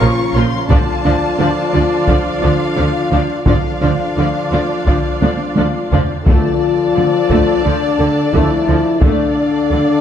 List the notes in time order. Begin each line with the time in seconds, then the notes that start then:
Already playing: C#3 F3 A#3 C#4 F4 A#4 F5 C#6
0.00 A#1 A#2 F3 F4 A#4 C#5
0.34 A#1 A#2 F3 F4 A#4 C#5 C6
0.69 D2 D3 F3 D4 F4 D5 F5 A5, taiko
1.04 D2 D3 F3 D4 F4 D5
1.39 D2 D3 F3 D4 F4 D5
1.73 D2 D3 F3 D4 F4 D5
2.07 D2 D3 F3 D4 F4 D5 F5, taiko
2.42 D2 D3 F3 D4 F4 D5
2.76 D2 D3 F3 D4 F4 D5
3.11 D2 D3 F3 D4 F4 D5
3.46 D2 D3 F3 D4 F4 D5 F5, taiko
3.82 D2 D3 F3 D4 F4 D5
4.17 D2 D3 F3 D4 F4 D5
4.52 D2 D3 F3 D4 F4 D5
4.87 D2 D3 F3 D4 F4 D5, taiko
5.22 D2 D3 F3 D4 F4 D5, taiko high
5.56 D2 D3 F3 D4 F4 D5, taiko high
5.92 D2 D3 F3 D4 F4 D5, taiko low
6.26 D2 D3 F3 A3 D4 F4 A4 D5 F5 A5, taiko
6.96 D2 D3
7.30 D2 D3 A3, taiko
7.64 D2 D3 F3 D4
7.99 D2 D3
8.32 D2 D3 F3 A3 E4, taiko
8.68 D2 D3 F3
9.02 D2 D3 A3 D4 A4 D5 F5, taiko
9.71 D2 D3